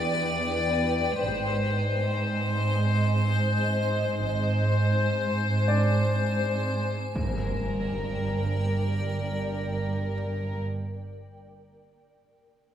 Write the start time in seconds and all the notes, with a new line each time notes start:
Already playing: E2 B4 D5 G5
1.23 G#1 G#2 C5 D#5 G#5
4.19 G#1 G#2 C5 G#5
5.68 D4 D5
7.15 G1 G2 A#4 D5 G5, impact